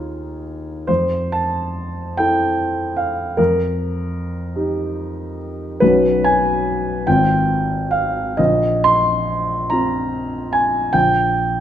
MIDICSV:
0, 0, Header, 1, 2, 480
1, 0, Start_track
1, 0, Key_signature, -3, "major"
1, 0, Tempo, 898204
1, 472, Time_signature, 6, 3, 24, 8
1, 944, Tempo, 808625
1, 1904, Tempo, 783290
1, 2864, Tempo, 854701
1, 3824, Tempo, 816327
1, 4304, Tempo, 898204
1, 5264, Tempo, 835655
1, 6603, End_track
2, 0, Start_track
2, 0, Title_t, "Grand piano"
2, 0, Program_c, 0, 0
2, 0, Control_c, 0, 64, 127
2, 0, Note_on_c, 0, 39, 37
2, 0, Note_on_c, 0, 63, 26
2, 0, Note_on_c, 0, 65, 30
2, 0, Note_on_c, 0, 68, 47
2, 222, Note_off_c, 0, 68, 0
2, 456, Note_off_c, 0, 39, 0
2, 456, Note_off_c, 0, 63, 0
2, 457, Note_off_c, 0, 65, 0
2, 466, Note_on_c, 0, 72, 57
2, 474, Note_on_c, 0, 41, 35
2, 482, Control_c, 0, 64, 0
2, 567, Control_c, 0, 64, 127
2, 707, Note_on_c, 0, 81, 61
2, 714, Note_off_c, 0, 72, 0
2, 1179, Note_off_c, 0, 81, 0
2, 1186, Note_on_c, 0, 79, 60
2, 1192, Note_on_c, 0, 64, 29
2, 1198, Note_on_c, 0, 69, 33
2, 1655, Note_on_c, 0, 77, 53
2, 1665, Note_off_c, 0, 79, 0
2, 1882, Note_off_c, 0, 41, 0
2, 1885, Note_off_c, 0, 64, 0
2, 1887, Note_off_c, 0, 69, 0
2, 1897, Note_on_c, 0, 70, 55
2, 1900, Note_off_c, 0, 77, 0
2, 1903, Note_on_c, 0, 41, 41
2, 1916, Control_c, 0, 64, 0
2, 2023, Control_c, 0, 64, 127
2, 2623, Note_on_c, 0, 63, 29
2, 2627, Note_on_c, 0, 67, 33
2, 3097, Note_off_c, 0, 70, 0
2, 3326, Note_off_c, 0, 41, 0
2, 3328, Note_off_c, 0, 63, 0
2, 3330, Note_off_c, 0, 67, 0
2, 3343, Note_on_c, 0, 71, 57
2, 3352, Note_on_c, 0, 35, 40
2, 3352, Note_on_c, 0, 61, 30
2, 3354, Note_on_c, 0, 66, 32
2, 3359, Control_c, 0, 64, 0
2, 3470, Control_c, 0, 64, 127
2, 3590, Note_on_c, 0, 80, 65
2, 3591, Note_off_c, 0, 71, 0
2, 4040, Note_off_c, 0, 61, 0
2, 4041, Note_off_c, 0, 35, 0
2, 4041, Note_off_c, 0, 66, 0
2, 4060, Note_off_c, 0, 80, 0
2, 4064, Note_on_c, 0, 79, 59
2, 4067, Note_on_c, 0, 32, 46
2, 4070, Note_on_c, 0, 60, 33
2, 4070, Note_on_c, 0, 65, 32
2, 4072, Control_c, 0, 64, 0
2, 4153, Control_c, 0, 64, 127
2, 4535, Note_on_c, 0, 77, 55
2, 4540, Note_off_c, 0, 79, 0
2, 4770, Note_off_c, 0, 32, 0
2, 4771, Note_off_c, 0, 60, 0
2, 4771, Note_off_c, 0, 65, 0
2, 4783, Note_on_c, 0, 75, 62
2, 4786, Note_off_c, 0, 77, 0
2, 4793, Note_on_c, 0, 34, 46
2, 4798, Control_c, 0, 64, 0
2, 4905, Control_c, 0, 64, 127
2, 5030, Note_off_c, 0, 75, 0
2, 5033, Note_on_c, 0, 84, 78
2, 5508, Note_on_c, 0, 82, 64
2, 5509, Note_off_c, 0, 84, 0
2, 5515, Note_on_c, 0, 60, 33
2, 5520, Note_on_c, 0, 65, 35
2, 5984, Note_on_c, 0, 80, 62
2, 5985, Note_off_c, 0, 82, 0
2, 6202, Note_off_c, 0, 34, 0
2, 6203, Note_off_c, 0, 60, 0
2, 6205, Note_off_c, 0, 65, 0
2, 6214, Note_on_c, 0, 79, 72
2, 6222, Note_off_c, 0, 80, 0
2, 6222, Note_on_c, 0, 34, 41
2, 6234, Control_c, 0, 64, 0
2, 6319, Control_c, 0, 64, 127
2, 6603, Note_off_c, 0, 34, 0
2, 6603, Note_off_c, 0, 79, 0
2, 6603, End_track
0, 0, End_of_file